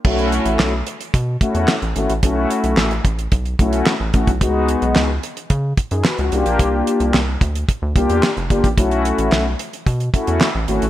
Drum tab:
CC |x---------------|----------------|----------------|----------------|
HH |-xxx--xxx-xx-xxx|x-xx-xxxxxxx--xx|x-xx--xxx-xx-xxx|x-xx--xxx-xx-xxx|
CP |----x-------x---|----x-------x---|----x-------x---|----x-------x---|
SD |----o-------o---|----o-------o---|----o-------o---|----o-------o---|
BD |o-------o-o-----|o-----o-o-o---oo|o-------o-o-----|o-----o-o-o---oo|

CC |----------------|
HH |xxxx--xxxxxx--xx|
CP |----x-------x---|
SD |----o-------o---|
BD |o-------o-o-----|